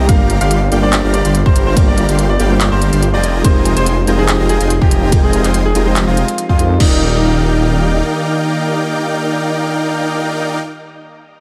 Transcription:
Already playing: C2 G3 C4 D4 D#4 A#4
0.07 G1 G3 A#3 D4 F4 G4 A#4 D5 F5 A#5, kick, closed hi-hat, ride
0.11 A#4
0.30 closed hi-hat
0.41 G1 G3 G4 D5 F5 C6, closed hi-hat
0.51 closed hi-hat
0.71 G1 G3 A#3 D4 F4 G4 A#4 D5 F5 G5, closed hi-hat
0.82 G3 A#3 D4 F4 C5 D5
0.93 clap, closed hi-hat
1.04 G1 G3 G4 D5 F5 A#5
1.14 D5, closed hi-hat
1.25 G1 G3 G4 D5 F5 C6, closed hi-hat
1.35 closed hi-hat
1.46 G1 G3 G4 C5 D5 F5 A#5, kick
1.56 closed hi-hat
1.67 C5
1.75 G1 G3 A#3 D4 F4 G4 D5 F5 A#5, kick, closed hi-hat, ride
1.79 A#4
1.88 D5
1.98 closed hi-hat
2.09 G1 G3 G4 D5 F5 C6, closed hi-hat
2.19 closed hi-hat
2.30 D5
2.38 G1 G3 A#3 D4 F4 G4 A#4 D5 F5 G5, closed hi-hat
2.50 G3 A#3 D4 F4 C5
2.61 clap, closed hi-hat
2.72 G1 G3 G4 C5 D5 F5 A#5
2.82 closed hi-hat
2.93 G1 G3 G4 D5 F5 C6, closed hi-hat
3.03 closed hi-hat
3.14 F1 F4 C5 D5 D#5 G5 G#5 A#5
3.23 F3 G#3 D#4 G4, closed hi-hat
3.42 F1 G#3 C4 D#4 F4 G4 A#4 C5 D#5 G5 G#5 A#5, kick, closed hi-hat, ride
3.65 closed hi-hat
3.77 F1 F4 C5 D#5 G5 G#5 C6, closed hi-hat
3.86 closed hi-hat
4.06 F1 G#3 C4 D#4 F4 G4 A#4 C5 D#5 G5 G#5 A#5, closed hi-hat
4.18 G#3 C4 D#4 G4 G#4 C5
4.28 clap, closed hi-hat
4.40 F1 F4 C5 D#5 G5 G#5 A#5
4.49 G#4, closed hi-hat
4.60 F1 F4 C5 D#5 G5 G#5 C6, closed hi-hat
4.70 closed hi-hat
4.81 F1 F4 G4 C5 D#5 G5 G#5 A#5, kick
4.91 closed hi-hat
5.03 G4
5.10 F1 G#3 C4 D#4 F4 G4 C5 D#5 G5 G#5 A#5, kick, closed hi-hat, ride
5.14 A#4
5.24 G#4
5.33 closed hi-hat
5.44 F1 F4 C5 D#5 G5 G#5 C6, clap, closed hi-hat
5.54 closed hi-hat
5.65 G#4
5.74 F1 G#3 C4 D#4 F4 G4 A#4 C5 D#5 G5 G#5 A#5, closed hi-hat
5.85 G#3 C4 D#4 G4 C5
5.96 clap, closed hi-hat
6.07 F1 F4 C5 D#5 G5 G#5 A#5
6.17 closed hi-hat
6.28 closed hi-hat
6.38 closed hi-hat
6.49 F2 F4 C5 D#5 G5 G#5 C6, kick
6.58 G#3 C4 D#4 G4 A#4, closed hi-hat
6.77 D#1 D#3 G3 A#3 D#4 G4 A#4 D5 F5 G5, kick, crash
6.82 F4 A#4

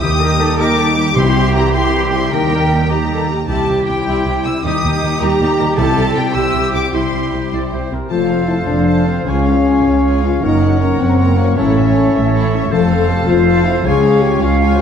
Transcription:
Already playing: G3 G4
0.00 D#2 D#3 A#3 D#4 G4 A#4 D#6
0.05 G3 D#4
0.21 G3 A#3 D#4 G4 A#4 D#5
0.39 A#3 D#4 G4 A4 A#4
0.58 G3 A#3 D#4 G4 A#4 D#5 D6
0.77 A#3 D#4 G4 A4 A#4
0.96 G3 A#3 D#4 G4 D#5
1.16 C2 C3 E3 G3 E4 G4 C5 C6
1.35 G3 C4 G4 E5
1.54 E3 E4 C5 A#5
1.58 E4
1.73 G3 C4 E4 G4 C5 E5 C6
1.93 E3 E4 C5
2.11 G3 C4 G4 E5 C6
2.31 D#2 D#3 G3 A#3 D#4 G4 A#4 G5
2.35 G4
2.51 G3 A#3 G4 D#5
2.71 A#3 D#4 G4 A#4
2.90 G3 A#3 D#4 G4 D#5 A#5
3.10 A#3 D#4 G4 A4 A#4
3.29 G3 A#3 D#4 G4 D#5
3.48 C2 C3 G3 E4 G4 C5 A5
3.68 C2 G3 E4
3.86 C2 G3 C4 E4 G5
4.06 C2 G3 E4 C5
4.26 C2 G3 E4
4.44 C2 G3 C4 E6
4.64 D#2 D#3 G3 D#4 G4 A#4 D#6
4.83 D#2 G3 A#3 D#4
5.02 D#2 G3 A#3 G4
5.20 D#2 G3 D#4 G4 D#5 A#5
5.38 D#2 D#4 G4
5.43 G3
5.59 D#2 G3 A#3 D#4
5.76 C2 C3 G3 E4 G4 A4 C5 A5
5.95 C2 G3 E4
6.15 C2 G3 C4 E4 G5
6.32 C2 G3 E4 G4 C5 E6
6.54 C2 G3 E4
6.73 C2 G3 C4 D6
6.92 C2 C3 G3 E4 G4 C6
7.12 C2 G3 E4
7.32 C2 G3 C4 E4
7.52 C2 G3 E4 C5 D5
7.71 C2 G3 E4 C5
7.91 C2 G3 C4 G4 A#4
8.09 F1 F2 F3 A3 F4 A4 C5 F5 A5
8.19 C4
8.28 C4 F4 C5 F5
8.39 A4
8.48 A3 E4 A4 C5 A5
8.58 F5
8.67 F1 F2 C4 D4 C5 F5 A5
8.77 C6
8.86 A3 A4 A5
8.97 F5
9.06 C4 C5 F5
9.16 F4
9.25 C#2 C#3 C#4 F4 G#4 F5 G#5
9.29 C#5
9.34 G#3
9.44 C#4 F4 F5
9.54 F4
9.63 F4 G#4 G#5
9.68 G#4
9.74 C#5
9.83 C#2 C#4 F4 F5
9.93 G#5
10.03 F4 G#4 F5 G#5
10.12 C#5
10.22 C#4 F4 G#4 F5
10.32 C#4
10.42 F#1 F#2 A#3 D#4 A#4 C#5 F#5 A#5
10.52 C#3
10.62 C#4 C#5 F#5
10.70 F#4
10.80 A#3 C#4 A#4 A#5
10.90 C#5
10.98 F#1 F#2 C4 C#4 C#5 F#5
11.09 A#5
11.18 A#3 A#4 F#5 A#5
11.28 C#5
11.35 A#3 A#4 F#5
11.40 C#4 C#5
11.47 C#4
11.55 A1 A2 C#4 E4 A4 C#5 E5
11.65 E3
11.74 C#4 C#5 E5
11.85 E4
11.94 E4 A4 C#5
12.06 C#5
12.14 A1 A2 C#4 C#5 E5
12.25 A5
12.34 E4 A4 C#5 E5
12.44 C#5
12.53 C#4 A4 C#5 E5
12.62 C#4
12.71 F1 F2 F3 A3 A4 C5 F5 A5
12.82 C4
12.89 C4 F4 C5 F5
13.00 A4
13.09 A3 G4 A4 C5 A5
13.18 F5
13.27 F1 F2 C4 F4 A4 C5 F5 A5
13.37 C6
13.46 A3 A4 A5
13.56 F5
13.64 C4 E4 C5 F5
13.69 C5
13.74 F4
13.83 C#2 C#3 F4 G#4 C#5 F5 G#5
13.94 G#3
14.03 C#4 G#4 F5
14.13 F4
14.20 F4 G4 C#5 G#5
14.26 C#5
14.32 F4
14.42 C#2 C#4 F4 G#4 C#5 F5
14.52 C#6
14.60 F4 C#5 F5 G#5
14.72 C5 C#5
14.79 G#4

